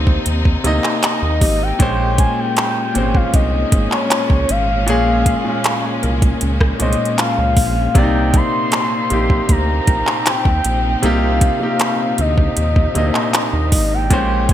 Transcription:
Already playing: analog synth bass D2, grand piano C3 A#3 D#4 C5 D5, string section C3 A#3 C4 D#4, soft synth lead C5
0.07 kick
0.26 analog synth bass D#2, closed hi-hat
0.45 kick
0.64 analog synth bass D2, grand piano C3 A#3 D#4 D#5, closed hi-hat
0.84 clap
1.03 soft synth lead D#5, clap, closed hi-hat
1.22 analog synth bass D#2
1.41 analog synth bass G#1, synth pluck G4, kick, open hi-hat
1.63 soft synth lead G5
1.79 analog synth bass A#1, grand piano A#2 G#3 C#4 C5, string section A#2 G#3 C#4, kick, closed hi-hat
2.18 soft synth lead G#5, kick, closed hi-hat
2.39 soft synth lead G5
2.57 clap, closed hi-hat
2.94 analog synth bass G#1, grand piano A#2 G#3 C4 C5, closed hi-hat
3.03 grand piano C#4
3.15 soft synth lead F5, kick
3.34 analog synth bass C2, soft synth lead D#5, kick, closed hi-hat
3.72 analog synth bass G#1, kick, closed hi-hat
3.92 soft synth lead C#5, clap
4.11 clap, closed hi-hat
4.30 analog synth bass C#2, kick
4.49 analog synth bass G#1, soft synth lead F5, closed hi-hat
4.70 soft synth lead F5
4.87 analog synth bass A#1, grand piano A#2 G#3 C#4 G#4, closed hi-hat
5.26 kick, closed hi-hat
5.45 grand piano A#2 G#3 C#4 F4
5.64 clap, closed hi-hat
6.03 analog synth bass C2, synth pluck A#4, closed hi-hat
6.22 kick, closed hi-hat
6.41 analog synth bass C#2, closed hi-hat
6.61 kick, cross-stick
6.79 analog synth bass C2, grand piano A#2 G#3 C#4 C5, soft synth lead D#5, closed hi-hat
6.93 closed hi-hat
7.05 closed hi-hat
7.18 soft synth lead F5, clap, closed hi-hat
7.38 analog synth bass C#2
7.57 analog synth bass A#1, kick, open hi-hat
7.95 analog synth bass C2, string section A#2 C4 D#4, grand piano C3 A#3 D4 D5, soft synth lead G5, kick, closed hi-hat
8.03 grand piano D#4
8.34 soft synth lead C6, kick, closed hi-hat
8.72 clap, closed hi-hat
9.10 analog synth bass A#1, grand piano C3 A#3 D#4 G4, closed hi-hat
9.30 kick
9.49 analog synth bass D2, soft synth lead A#5, kick, closed hi-hat
9.87 analog synth bass A#1, kick, closed hi-hat
10.07 clap
10.26 soft synth lead G5, clap, closed hi-hat
10.45 analog synth bass D#2, kick
10.65 analog synth bass A#1, closed hi-hat
11.02 analog synth bass C2, grand piano C3 A#3 D#4 G4, soft synth lead F5, closed hi-hat
11.41 kick, closed hi-hat
11.60 grand piano C3 A#3 D#4 G4
11.79 clap, closed hi-hat
12.18 analog synth bass D2, soft synth lead D#5, closed hi-hat
12.38 kick
12.57 analog synth bass D#2, closed hi-hat
12.76 kick
12.95 analog synth bass D2, grand piano C3 A#3 D4 D#5, closed hi-hat
13.03 grand piano D#4
13.15 clap
13.34 soft synth lead D#5, clap, closed hi-hat
13.53 analog synth bass D#2
13.72 analog synth bass G#1, kick, open hi-hat
13.94 soft synth lead G5
14.10 analog synth bass A#1, grand piano A#2 G#3 C#4 C5, string section G#3 A#3 C#4, kick, closed hi-hat
14.49 kick, closed hi-hat

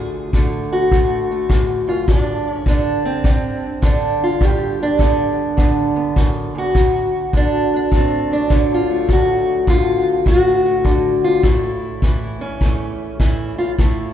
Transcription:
Already playing: steel-string acoustic guitar D2 D3 A3 G#4
0.33 steel-string acoustic guitar D3 A3, kick
0.73 steel-string acoustic guitar F#4
0.91 steel-string acoustic guitar A2 A3, kick
1.31 steel-string acoustic guitar A3
1.49 steel-string acoustic guitar E2, kick
1.88 steel-string acoustic guitar F#2 F4
2.08 steel-string acoustic guitar G2 D4, kick
2.52 steel-string acoustic guitar C#4
2.66 steel-string acoustic guitar D3 D4, kick
3.05 steel-string acoustic guitar C4
3.24 steel-string acoustic guitar D3, kick
3.82 steel-string acoustic guitar D3 D4, kick
4.23 steel-string acoustic guitar F4
4.41 steel-string acoustic guitar G2 G4, kick
4.83 steel-string acoustic guitar D4
4.99 steel-string acoustic guitar D3 B3, kick
5.57 steel-string acoustic guitar D3 B3, kick
5.96 steel-string acoustic guitar B3
6.16 steel-string acoustic guitar F#2, kick
6.55 steel-string acoustic guitar E2 F#4
6.75 steel-string acoustic guitar D2, kick
7.33 steel-string acoustic guitar D3 D4, kick
7.76 steel-string acoustic guitar D4
7.92 steel-string acoustic guitar A2, kick
7.96 steel-string acoustic guitar C4
8.31 steel-string acoustic guitar F#3 D4
8.50 steel-string acoustic guitar D3, kick
8.74 steel-string acoustic guitar F4
8.90 steel-string acoustic guitar A3
9.09 steel-string acoustic guitar D2 F#4, kick
9.67 steel-string acoustic guitar D3 F4, kick
10.26 steel-string acoustic guitar A2 F#4, kick
10.66 steel-string acoustic guitar A3
10.85 steel-string acoustic guitar D3, kick
11.24 steel-string acoustic guitar F4
11.43 steel-string acoustic guitar A2 E4, kick
12.02 steel-string acoustic guitar E3 E4, kick
12.41 steel-string acoustic guitar C#4
12.61 steel-string acoustic guitar E2 A3, kick
13.20 steel-string acoustic guitar E3 E4, kick
13.58 steel-string acoustic guitar F4
13.79 steel-string acoustic guitar A2 E4, kick

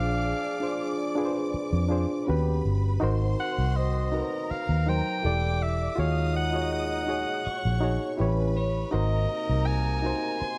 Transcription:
Already playing: fingered electric bass A#1, trombone section F3 D4 G#4, reed electric piano D4 F4 G#4 C5, string section D5 D6, alto saxophone F5
0.60 reed electric piano D4 F4 G#4 C5
1.16 reed electric piano D4 F4 G#4 B4
1.25 reed electric piano C5
1.54 muted fingered electric bass stroke
1.73 fingered electric bass F2
1.88 reed electric piano D4 F4 G#4 C5
2.27 fingered electric bass D#2, trombone section C#3 B3 G4, reed electric piano C#4 F#4 G4 B4, string section B4 B5
2.65 fingered electric bass G1
3.00 fingered electric bass G#1, trombone section D#3 C4 F#4, reed electric piano D#4 F#4 A#4 C5, string section C5 C6
3.40 alto saxophone F#5
3.58 fingered electric bass C2
3.76 alto saxophone D#5
4.12 reed electric piano D#4 F#4 A#4 B4, string section A#4 A#5
4.22 reed electric piano C5
4.51 alto saxophone F5, muted fingered electric bass stroke
4.69 fingered electric bass D#2
4.86 reed electric piano F#3 D#4 A#4 C5, alto saxophone G5
5.23 fingered electric bass E1, trombone section B2 A3 E4, reed electric piano E4 G4 A4 D5, string section D5 D6
5.62 alto saxophone E5
5.96 fingered electric bass D#2, trombone section A#2 G#3 D#4, reed electric piano F4 F#4 G#4 C#5, string section D#5 D#6
6.00 alto saxophone F5
6.36 alto saxophone F#5
6.53 reed electric piano F4 F#4 G#4 C#5
6.73 alto saxophone F#5
7.07 reed electric piano D#4 F#4 G#4 C#5
7.46 string section C#5 C#6, muted fingered electric bass stroke
7.65 fingered electric bass A#1
7.81 reed electric piano D#4 F#4 G#4 C#5
8.18 fingered electric bass A1, trombone section G2 E3 C#4, reed electric piano E4 G4 B4 C#5, string section B4 B5
8.57 alto saxophone C#5
8.91 fingered electric bass G#1, trombone section C3 A#3 D#4, reed electric piano D#4 F#4 A#4 C5, string section A#4 A#5, alto saxophone D#5
9.49 fingered electric bass C2
9.67 alto saxophone G#5
10.02 reed electric piano D#4 F#4 A#4 C5
10.41 string section C5 C6, muted fingered electric bass stroke

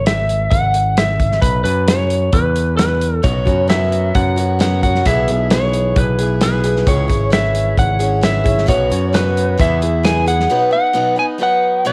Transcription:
Already playing: picked electric bass G#1
0.06 lead electric guitar E5, snare, closed hi-hat
0.29 closed hi-hat
0.50 picked electric bass G#1, lead electric guitar F#5, kick, closed hi-hat
0.74 closed hi-hat
0.97 lead electric guitar E5, snare, closed hi-hat
1.20 kick, closed hi-hat
1.32 snare
1.42 picked electric bass B1, lead electric guitar B4, kick, closed hi-hat
1.64 picked electric bass F#2, lead electric guitar B4, closed hi-hat
1.88 lead electric guitar C#5, snare, closed hi-hat
2.10 closed hi-hat
2.33 picked electric bass E2, lead electric guitar B4, kick, closed hi-hat
2.56 closed hi-hat
2.77 lead electric guitar B4, snare, closed hi-hat
3.01 closed hi-hat
3.23 picked electric bass B1, steel-string acoustic guitar B2 F#3 B3 C#4 F#4, lead electric guitar C#5, kick, closed hi-hat
3.45 picked electric bass F#2, steel-string acoustic guitar B3 C#4 F#4, kick, closed hi-hat
3.67 steel-string acoustic guitar F#3 B3 C#4 F#4, lead electric guitar E5, snare, closed hi-hat
3.92 closed hi-hat
4.15 picked electric bass F#2, lead electric guitar F#5, kick, closed hi-hat
4.36 steel-string acoustic guitar B3 C#4 F#4, closed hi-hat
4.59 steel-string acoustic guitar F#3 B3 C#4 F#4, lead electric guitar F#5, snare, closed hi-hat
4.83 steel-string acoustic guitar B3 C#4 F#4, lead electric guitar F#5, kick, closed hi-hat
4.95 snare
5.05 picked electric bass B1, steel-string acoustic guitar B2 E3 B3 E4 G#4, lead electric guitar E5, kick, closed hi-hat
5.28 picked electric bass B1, steel-string acoustic guitar B3 E4 G#4, closed hi-hat
5.50 steel-string acoustic guitar E3 B3 E4 G#4, lead electric guitar C#5, snare, closed hi-hat
5.73 closed hi-hat
5.96 picked electric bass B1, lead electric guitar B4, kick, closed hi-hat
6.19 steel-string acoustic guitar B3 E4 G#4, closed hi-hat
6.41 steel-string acoustic guitar E3 B3 E4 G#4, lead electric guitar B4, snare, closed hi-hat
6.64 steel-string acoustic guitar B3 E4 G#4, closed hi-hat
6.76 snare
6.86 picked electric bass C#2, steel-string acoustic guitar C#3 E3 C#4 E4 G#4, lead electric guitar C#5, kick, closed hi-hat
7.08 picked electric bass G#1, steel-string acoustic guitar C#4 E4 G#4, kick, closed hi-hat
7.30 steel-string acoustic guitar E3 C#4 E4 G#4, lead electric guitar E5, snare, closed hi-hat
7.55 closed hi-hat
7.78 picked electric bass G#1, lead electric guitar F#5, kick, closed hi-hat
7.99 steel-string acoustic guitar C#4 E4 G#4, closed hi-hat
8.21 steel-string acoustic guitar E3 C#4 E4 G#4, lead electric guitar E5, snare, closed hi-hat
8.44 steel-string acoustic guitar C#4 E4 G#4, kick, closed hi-hat
8.58 snare
8.66 picked electric bass B1, steel-string acoustic guitar B2 F#3 B3 C#4 F#4, lead electric guitar C#5, kick, closed hi-hat
8.90 picked electric bass F#2, steel-string acoustic guitar B3 C#4 F#4, closed hi-hat
9.13 steel-string acoustic guitar F#3 B3 C#4 F#4, lead electric guitar B4, snare, closed hi-hat
9.37 closed hi-hat
9.58 picked electric bass E2, steel-string acoustic guitar E3 B3 E4 G#4, lead electric guitar E5, kick, closed hi-hat
9.81 steel-string acoustic guitar B3 E4 G#4, closed hi-hat
10.03 steel-string acoustic guitar E3 B3 E4 G#4, lead electric guitar G#5, snare, closed hi-hat
10.26 steel-string acoustic guitar B3 E4 G#4, lead electric guitar F#5, closed hi-hat
10.40 snare
10.49 steel-string acoustic guitar B2 F#3 B3 D#4 B4
10.71 steel-string acoustic guitar B3 D#4 B4, lead electric guitar F#5
10.93 steel-string acoustic guitar B2 F#3 B3 D#4 B4
11.16 steel-string acoustic guitar B3 D#4 B4, lead electric guitar G#5
11.38 steel-string acoustic guitar F#3 B3 D#4 B4
11.43 lead electric guitar F#5
11.85 steel-string acoustic guitar B2 F#3 B3 D#4 B4, lead electric guitar D#5

